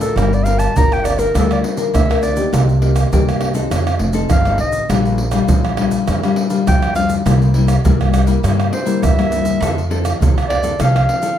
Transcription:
Already playing: nylon-string guitar A2
0.00 nylon-string guitar D4 F4 A#4, clarinet A4, pandeiro, shaker
0.16 upright bass G1, nylon-string guitar G3, clarinet A#4, pandeiro, tamborim, shaker, surdo
0.33 clarinet D5, pandeiro, shaker
0.43 nylon-string guitar D4 F4 A#4, clarinet F5, pandeiro, shaker
0.59 clarinet A5, pandeiro, tamborim, shaker
0.75 upright bass G1, nylon-string guitar D3 D4 F4 A#4, clarinet A#5, pandeiro, shaker, surdo
0.92 clarinet G5, pandeiro, tamborim, shaker
1.05 clarinet D5, pandeiro, tamborim, shaker
1.18 nylon-string guitar D4 F4 A#4, clarinet A#4, pandeiro, shaker
1.34 upright bass D2, nylon-string guitar G3 D4 F4 A#4, clarinet A4, pandeiro, tamborim, shaker, surdo
1.51 clarinet D5, pandeiro, tamborim, shaker
1.64 pandeiro
1.77 nylon-string guitar D4 F4 A#4, pandeiro, shaker
1.93 upright bass D2, nylon-string guitar D3, clarinet E5, pandeiro, tamborim, shaker, surdo
2.09 nylon-string guitar D4 F4 A#4, pandeiro, tamborim, shaker
2.23 clarinet D5, pandeiro, shaker
2.36 nylon-string guitar A#3 D#4 G4, pandeiro, shaker
2.53 upright bass C2, nylon-string guitar C3, pandeiro, tamborim, shaker, surdo
2.69 pandeiro, shaker
2.81 nylon-string guitar A#3 D#4 G4, pandeiro
2.96 pandeiro, tamborim, shaker
3.12 upright bass C2, nylon-string guitar G2 A#3 D#4 G4, pandeiro, shaker, surdo
3.29 pandeiro, tamborim, shaker
3.41 pandeiro, tamborim
3.54 nylon-string guitar C4 D#4 A4, pandeiro, shaker
3.71 upright bass F2, nylon-string guitar F3, pandeiro, tamborim, shaker, surdo
3.87 pandeiro, tamborim, shaker
3.99 upright bass F1, pandeiro
4.13 nylon-string guitar C4 D#4 A4, pandeiro, shaker
4.30 upright bass G1, nylon-string guitar C3, clarinet F5, pandeiro, tamborim, shaker, surdo
4.45 nylon-string guitar C4 D#4 A4, pandeiro, tamborim, shaker
4.58 upright bass A1, clarinet D#5, pandeiro
4.72 pandeiro, shaker
4.89 upright bass A#1, nylon-string guitar A#2 G3 D4 F4, pandeiro, tamborim, shaker, surdo
5.05 pandeiro, shaker
5.18 pandeiro
5.32 nylon-string guitar G3 D4 F4, pandeiro, tamborim, shaker
5.48 upright bass A#1, nylon-string guitar F3, pandeiro, shaker, surdo
5.65 pandeiro, tamborim, shaker
5.77 nylon-string guitar G3 D4 F4, pandeiro, tamborim
5.91 pandeiro, shaker
6.07 upright bass F2, nylon-string guitar A#2, pandeiro, tamborim, shaker, surdo
6.23 nylon-string guitar G3 D4 F4, pandeiro, tamborim, shaker
6.36 pandeiro
6.50 nylon-string guitar G3 D4 F4, pandeiro, shaker
6.67 upright bass F2, nylon-string guitar F3, clarinet G5, pandeiro, tamborim, shaker, surdo
6.82 pandeiro, tamborim, shaker
6.95 nylon-string guitar G3 D4 F4, clarinet F5, pandeiro, shaker
7.09 pandeiro, shaker
7.25 upright bass C2, nylon-string guitar C3 G3 A#3 E4, pandeiro, tamborim, shaker, surdo
7.42 pandeiro, shaker
7.54 nylon-string guitar G3 A#3 E4, pandeiro
7.68 pandeiro, tamborim, shaker
7.84 upright bass C2, nylon-string guitar G2 G3 A#3 E4, pandeiro, shaker, surdo
8.01 pandeiro, tamborim, shaker
8.14 pandeiro, tamborim, shaker
8.27 nylon-string guitar G3 A#3 E4, pandeiro, shaker
8.43 upright bass G2, nylon-string guitar C3 G3 A#3 E4, pandeiro, tamborim, shaker, surdo
8.60 pandeiro, tamborim, shaker
8.73 clarinet C5, pandeiro
8.85 nylon-string guitar G3 A#3 E4, pandeiro, shaker
9.02 upright bass E2, nylon-string guitar G2, clarinet E5, pandeiro, tamborim, shaker, surdo
9.18 nylon-string guitar G3 A#3 E4, pandeiro, tamborim, shaker
9.32 pandeiro, shaker
9.45 pandeiro, shaker
9.60 upright bass F2, nylon-string guitar F3 C4 E4 A4, pandeiro, tamborim, shaker, surdo
9.78 pandeiro, shaker
9.90 nylon-string guitar C4 E4 A4, pandeiro
10.05 pandeiro, tamborim, shaker
10.20 upright bass F2, nylon-string guitar C3 C4 E4 A4, pandeiro, shaker, surdo
10.38 pandeiro, tamborim, shaker
10.49 clarinet D5, pandeiro, tamborim
10.63 nylon-string guitar C4 E4 A4, pandeiro, shaker
10.79 upright bass C2, nylon-string guitar F3 C4 A4, clarinet F5, pandeiro, tamborim, shaker, surdo
10.96 pandeiro, tamborim, shaker
11.09 pandeiro
11.22 nylon-string guitar C4 E4 A4, pandeiro, shaker

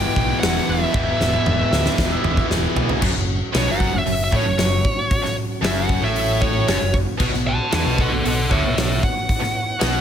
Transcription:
Already playing: distorted electric guitar E2 B2 E3 B3 E4 G4, tonewheel organ E3 B3, lead electric guitar G5
0.16 fingered electric bass B1, kick
0.40 fingered electric bass E1, lead electric guitar F#5, snare, open hi-hat
0.68 fingered electric bass E1, lead electric guitar E5
0.93 fingered electric bass E1, distorted electric guitar E2 B2 E3 B3 E4 G4, kick, high tom
1.20 fingered electric bass E1, snare
1.33 high tom
1.46 fingered electric bass E1, mid tom
1.70 fingered electric bass D2, distorted electric guitar E3 B3 E4 G4, snare
1.86 snare
1.98 fingered electric bass E1, kick, snare
2.24 fingered electric bass E1, mid tom
2.37 kick
2.50 fingered electric bass E1, snare
2.75 fingered electric bass B1, floor tom
2.89 floor tom
3.01 fingered electric bass F#1, distorted electric guitar F#2, tonewheel organ F#3 C#4 F#4, kick, crash
3.14 fingered electric bass F#1, distorted electric guitar F#2
3.54 fingered electric bass B1, distorted electric guitar B2, lead electric guitar C#5, snare, open hi-hat
3.67 fingered electric bass F#1, distorted electric guitar F#2
3.71 lead electric guitar F#5
3.80 kick
3.93 fingered electric bass F#1, distorted electric guitar F#2
3.98 lead electric guitar E5
4.06 fingered electric bass F#1, distorted electric guitar F#2, open hi-hat
4.24 lead electric guitar E5
4.32 fingered electric bass A1, distorted electric guitar A2, lead electric guitar C#5, kick
4.45 fingered electric bass F#1, distorted electric guitar F#2
4.57 fingered electric bass F#1, distorted electric guitar F#2, snare, open hi-hat
4.85 kick
5.11 kick, open hi-hat
5.23 muted distorted electric guitar stroke, muted fingered electric bass stroke, snare
5.61 fingered electric bass F#1, distorted electric guitar F#2, snare, open hi-hat
5.66 lead electric guitar E5
5.78 lead electric guitar F#5
5.89 kick
6.01 fingered electric bass A1, distorted electric guitar A2, lead electric guitar E5
6.16 open hi-hat
6.42 lead electric guitar C#5, kick
6.67 fingered electric bass F#1, distorted electric guitar F#2, snare, open hi-hat
6.80 fingered electric bass F#1, distorted electric guitar F#2
6.94 kick
7.18 fingered electric bass B1, distorted electric guitar B2, tonewheel organ B3 F#4 C#5, kick, crash
7.32 fingered electric bass B1, distorted electric guitar B2, snare
7.47 lead electric guitar F#5 A5
7.72 fingered electric bass E2, distorted electric guitar E3, lead electric guitar F#5 A5, snare, open hi-hat
7.84 fingered electric bass B1, distorted electric guitar B2
7.98 lead electric guitar A4 F#5, kick
8.11 fingered electric bass B1, distorted electric guitar B2
8.24 fingered electric bass B1, distorted electric guitar B2, lead electric guitar A4, open hi-hat
8.28 lead electric guitar F#5
8.49 fingered electric bass D2, distorted electric guitar D3, lead electric guitar C#5 E5, kick
8.63 fingered electric bass B1, distorted electric guitar B2
8.75 fingered electric bass B1, distorted electric guitar B2, lead electric guitar C#5 E5, snare, open hi-hat
9.03 lead electric guitar F#5, kick
9.28 tonewheel organ E4, kick, open hi-hat
9.40 muted distorted electric guitar stroke, muted fingered electric bass stroke, snare
9.80 fingered electric bass B1, distorted electric guitar B2, snare, open hi-hat

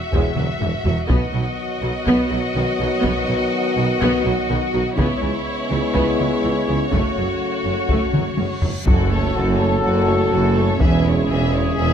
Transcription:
Already playing: violin section F#4 E5
0.11 tuba E1, double bass section E1, cello section E2, trombone section E3 F#3, viola section G#3, french horn section B3 G#4, taiko
0.36 tuba E1, double bass section E1, cello section E2, viola section F#3, taiko mid
0.61 double bass section E1, tuba E1, cello section E2, viola section E3, taiko low-mid
0.85 tuba E1, double bass section E1, cello section E2, viola section F#3, taiko low
1.08 double bass section B1, tuba B1, cello section B2, trombone section D#3 F#3, viola section B3, french horn section B3 F#4, violin section F#4 D#5, taiko
1.33 double bass section B1, tuba B1, cello section B2, viola section F#3
1.82 double bass section B1, tuba B1, cello section B2, viola section F#3
2.06 double bass section B1, tuba B1, cello section B2, viola section B3, taiko
2.30 double bass section B1, tuba B1, cello section B2, viola section F#3
2.55 double bass section B1, tuba B1, cello section B2, viola section D#3
2.79 tuba B1, double bass section B1, cello section B2, viola section F#3
3.03 tuba B1, double bass section B1, cello section B2, viola section B3, taiko
3.28 tuba B1, double bass section B1, cello section B2, viola section F#3
3.76 double bass section B1, tuba B1, cello section B2, viola section F#3
4.00 double bass section B1, tuba B1, cello section B2, viola section B3, taiko
4.25 double bass section B1, tuba B1, cello section B2, viola section F#3
4.49 tuba B1, double bass section B1, cello section B2, viola section D#3
4.73 tuba B1, double bass section B1, cello section B2, viola section F#3
4.96 double bass section C#2, tuba C#2, trombone section C#3 G#3, cello section C#3, french horn section B3 E4, viola section B3, violin section E4 C#5, taiko
5.21 double bass section C#2, tuba C#2, cello section C#3, viola section G#3
5.70 double bass section C#2, tuba C#2, cello section C#3, viola section G#3
5.94 double bass section C#2, tuba C#2, cello section C#3, viola section B3, taiko
6.19 double bass section C#2, tuba C#2, cello section C#3, viola section G#3
6.43 double bass section C#2, tuba C#2, cello section C#3, viola section E3
6.68 double bass section C#2, tuba C#2, cello section C#3, viola section G#3
6.89 tuba F#1, double bass section F#1, cello section F#2, trombone section F#3, french horn section A3 F#4, viola section A3, violin section F#4, taiko, reverse cymbal
7.16 tuba F#1, double bass section F#1, cello section F#2, viola section F#3
7.65 tuba F#1, double bass section F#1, cello section F#2, viola section F#3
7.89 tuba F#1, double bass section F#1, cello section F#2, viola section A3, taiko
8.13 double bass section F#1, tuba F#1, cello section F#2, viola section F#3, taiko mid
8.37 tuba F#1, double bass section F#1, cello section F#2, viola section C#3, taiko high
8.61 double bass section F#1, tuba F#1, cello section F#2, viola section F#3, taiko low
8.85 double bass section F#1, tuba F#1, cello section F#2, trombone section C#3 F#3, viola section F#3, french horn section C#4 F#4, violin section F#4 A4, trumpet section A4, taiko, impact
9.10 viola section A3, violin section A4 C#5
9.34 tuba F#1, double bass section F#1, cello section F#2, viola section F#3, violin section F#4 A4
9.58 viola section A3, violin section A4 C#5
9.83 double bass section F#1, tuba F#1, cello section F#2, viola section F#3, violin section F#4 A4
10.08 viola section A3, violin section A4 C#5
10.31 double bass section F#1, tuba F#1, cello section F#2, viola section F#3, violin section F#4 A4
10.57 viola section A3, violin section A4 C#5
10.79 double bass section E1, tuba E1, cello section E2, viola section E3, trombone section G#3, french horn section E4, trumpet section G#4, violin section G#4 E5, taiko
11.05 viola section G#3, violin section E4 C#5
11.29 double bass section E1, tuba E1, cello section E2, viola section E3, violin section G#4 E5
11.53 viola section G#3, violin section E4 C#5
11.76 double bass section E1, tuba E1, cello section E2, viola section E3, violin section G#4 E5

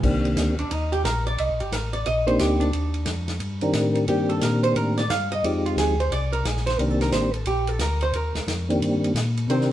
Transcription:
0.03 tonewheel organ C2 D#3 A#3 C4 D4 G4, kick, crash
0.25 ride
0.37 tonewheel organ D2, snare, hi-hat pedal, ride
0.59 tonewheel organ D2, hollow-body jazz guitar D4, ride
0.71 tonewheel organ D#2, hollow-body jazz guitar D#4, ride
0.92 hollow-body jazz guitar G4, ride
1.04 tonewheel organ A#1, hollow-body jazz guitar A#4, snare, hi-hat pedal, ride
1.27 hollow-body jazz guitar D5, ride
1.38 tonewheel organ C2, hollow-body jazz guitar D#5, ride
1.49 tonewheel organ A#1
1.60 tonewheel organ G1, hollow-body jazz guitar G4, ride
1.72 tonewheel organ A1, hollow-body jazz guitar A#4, snare, hi-hat pedal, ride
1.93 hollow-body jazz guitar D5, ride
2.06 tonewheel organ A#1, hollow-body jazz guitar D#5, ride
2.27 tonewheel organ A#3 C4 D4 D#4 G4, hollow-body jazz guitar C5, ride
2.39 tonewheel organ D2, hollow-body jazz guitar G4, snare, hi-hat pedal, ride
2.60 hollow-body jazz guitar D4, ride
2.73 tonewheel organ D#2, ride
2.94 ride
3.06 tonewheel organ F2, snare, hi-hat pedal, ride
3.28 snare, ride
3.40 tonewheel organ G2, ride
3.61 tonewheel organ D#3 C4 D4 G4 A#4, ride
3.73 tonewheel organ A2, snare, hi-hat pedal, ride
3.95 ride
4.08 tonewheel organ G2 D#3 A#3 C4 D4 G4, hollow-body jazz guitar G4, ride
4.29 hollow-body jazz guitar A4, ride
4.41 tonewheel organ A#2, hollow-body jazz guitar A#4, snare, hi-hat pedal, ride
4.63 hollow-body jazz guitar C5, ride
4.76 tonewheel organ A2, hollow-body jazz guitar A#4, ride
4.97 hollow-body jazz guitar D5, snare, ride
5.10 tonewheel organ G2, hollow-body jazz guitar F5, snare, hi-hat pedal, ride
5.32 hollow-body jazz guitar D#5, ride
5.44 tonewheel organ F2 F3 G#3 C4 D#4 G4, hollow-body jazz guitar D5, ride
5.66 hollow-body jazz guitar F4, ride
5.77 tonewheel organ D2, hollow-body jazz guitar G#4, snare, hi-hat pedal, ride
6.00 hollow-body jazz guitar C5, ride
6.10 tonewheel organ C2, hollow-body jazz guitar D5, ride
6.32 hollow-body jazz guitar A#4, ride
6.44 tonewheel organ A#1, hollow-body jazz guitar G#4, snare, hi-hat pedal, ride
6.57 snare
6.66 hollow-body jazz guitar C5, snare, ride
6.79 tonewheel organ C2 D#3 A#3 C4 D4 G4, hollow-body jazz guitar A#4, ride
6.90 hollow-body jazz guitar A4
7.01 hollow-body jazz guitar A#4, snare, ride
7.12 tonewheel organ A1, hollow-body jazz guitar C5, snare, hi-hat pedal, ride
7.34 hollow-body jazz guitar A4, ride
7.45 tonewheel organ A#1, hollow-body jazz guitar G4, ride
7.67 hollow-body jazz guitar A4, ride
7.79 tonewheel organ D2, hollow-body jazz guitar A#4, snare, hi-hat pedal, ride
8.01 hollow-body jazz guitar C5, ride
8.13 tonewheel organ D#2, hollow-body jazz guitar A#4, ride
8.34 tonewheel organ D#2, snare, ride
8.47 tonewheel organ F2, snare, hi-hat pedal, ride
8.69 tonewheel organ D#3 A#3 C4 D4 G4, ride
8.81 tonewheel organ G2, ride
9.04 ride
9.14 tonewheel organ A#2, snare, hi-hat pedal, ride
9.37 ride
9.48 tonewheel organ C3 D#3 C4 D4 G4 A#4, hollow-body jazz guitar C4 C5, ride
9.61 snare

